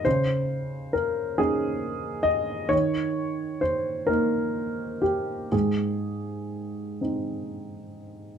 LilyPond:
\new Staff \with { instrumentName = "Upright piano" } { \time 6/8 \key aes \major \tempo 4. = 43 << { c''4 bes'8 aes'4 ees''8 | des''4 c''8 bes'4 g'8 | aes'4. r4. | } \\ { des4. <des' ees'>4. | ees4. <bes ees'>4. | aes,4. <c' ees'>4. | } >> }